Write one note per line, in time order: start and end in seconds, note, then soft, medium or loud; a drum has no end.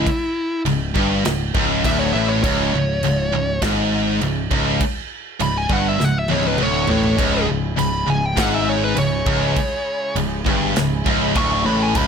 0.00 0.61 E4 medium
0.07 kick loud
0.07 crash medium
0.65 0.93 C#1 medium
0.65 0.90 C#2 medium
0.65 crash medium
0.95 1.23 G1 loud
0.95 1.24 G2 loud
0.95 kick medium
1.25 1.53 C#1 medium
1.25 1.49 C#2 medium
1.25 snare loud
1.25 crash medium
1.54 1.82 C#1 medium
1.54 1.83 C#2 loud
1.54 kick loud
1.84 2.12 D1 medium
1.84 2.13 D2 loud
1.84 1.99 E5 loud
1.84 kick loud
1.84 crash medium
2.00 2.13 C#5 loud
2.13 2.42 A1 medium
2.13 2.43 A2 loud
2.13 2.28 E5 loud
2.29 2.42 C#5 loud
2.43 2.71 C#1 loud
2.43 2.72 C#2 loud
2.43 3.59 C#5 loud
2.43 kick loud
2.43 crash medium
2.73 3.01 C#1 medium
2.73 2.97 C#2 medium
3.03 3.31 C#1 medium
3.03 3.27 C#2 medium
3.03 crash medium
3.33 3.61 C#1 medium
3.33 3.57 C#2 medium
3.62 4.18 G#1 loud
3.62 4.21 G#2 loud
3.62 kick loud
3.62 snare loud
3.62 crash medium
4.21 4.49 C#1 medium
4.21 4.46 C#2 medium
4.21 crash medium
4.51 4.79 C#1 medium
4.51 4.80 C#2 loud
4.51 kick loud
4.81 kick loud
4.81 crash medium
5.40 5.68 C#1 medium
5.40 5.64 C#2 medium
5.40 5.56 B5 loud
5.40 crash medium
5.58 5.73 G#5 medium
5.70 5.98 G1 medium
5.70 5.98 G2 loud
5.70 5.88 F#5 loud
5.70 kick medium
5.88 6.05 E5 medium
5.98 6.28 C#1 medium
5.98 6.23 C#2 medium
5.98 snare medium
6.05 6.17 F#5 medium
6.19 6.32 E5 medium
6.28 6.58 C#1 loud
6.28 6.58 C#2 medium
6.28 6.45 C#5 loud
6.28 high tom medium
6.43 high tom medium
6.47 6.63 B4 medium
6.58 6.88 D1 medium
6.58 6.87 D2 medium
6.58 mid tom medium
6.63 6.88 C#5 medium
6.87 7.17 A1 medium
6.87 7.17 A2 loud
6.87 7.47 C#5 loud
6.87 floor tom loud
7.03 floor tom medium
7.17 7.47 C#1 loud
7.17 7.46 C#2 loud
7.17 12.07 C#3 medium
7.17 12.07 G#3 medium
7.17 12.07 E4 medium
7.17 11.91 G#4 medium
7.17 kick loud
7.17 crash medium
7.47 7.77 C#1 medium
7.47 7.72 C#2 medium
7.76 8.06 C#1 medium
7.76 8.01 C#2 medium
7.76 8.08 B5 loud
7.76 crash medium
8.06 8.35 C#1 medium
8.06 8.31 C#2 medium
8.06 8.26 G#5 loud
8.26 8.40 G5 loud
8.36 8.93 G#1 medium
8.36 8.95 G#2 loud
8.36 kick loud
8.36 snare loud
8.36 crash medium
8.40 8.54 F#5 loud
8.54 8.68 E5 medium
8.69 8.83 C#5 medium
8.84 8.98 B4 loud
8.96 9.25 C#1 medium
8.96 9.21 C#2 medium
8.96 10.13 C#5 loud
8.96 crash medium
9.26 9.54 C#1 medium
9.26 9.56 C#2 loud
9.26 kick loud
9.56 kick loud
9.56 crash medium
10.15 10.44 C#1 medium
10.15 10.40 C#2 medium
10.15 crash medium
10.46 10.74 G1 loud
10.46 10.75 G2 loud
10.46 kick loud
10.76 11.04 C#1 medium
10.76 11.00 C#2 medium
10.76 snare loud
10.76 crash medium
11.06 11.34 C#1 loud
11.06 11.35 C#2 loud
11.06 kick loud
11.35 11.63 D1 loud
11.35 11.64 D2 loud
11.35 11.65 C#6 loud
11.35 kick loud
11.35 crash medium
11.66 11.94 A1 medium
11.66 11.95 A2 loud
11.66 11.83 B5 loud
11.83 11.96 G#5 medium
11.95 12.07 C#1 medium
11.95 12.07 C#2 loud
11.95 12.07 F#4 medium
11.95 12.07 B5 loud
11.95 kick loud
11.95 crash medium